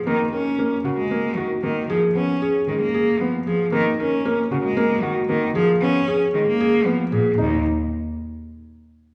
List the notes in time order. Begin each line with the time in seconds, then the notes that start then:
0.06 D#3 A#3
0.32 C#4 A#4
0.59 A#3
0.84 C#3 F#4
0.97 G#3
1.11 A#3
1.37 D#3 F#4
1.63 D#3 A#3
1.89 F3 G#4
2.15 B3 C#4
2.42 G#4
2.68 D#3 G#3
2.81 A#3
2.94 G#4
3.20 F3 B3
3.46 F3 G#4
3.72 D#3 A#3
3.99 C#4 A#4
4.25 A#3
4.51 C#3 F#4
4.64 G#3
4.77 A#3
5.03 D#3 F#4
5.29 D#3 A#3
5.55 F3 G#4
5.81 B3 C#4
6.08 G#4
6.34 D#3 G#3
6.47 A#3
6.60 G#4
6.86 F3 B3
7.12 A#2 G#4
7.38 D#2 D#4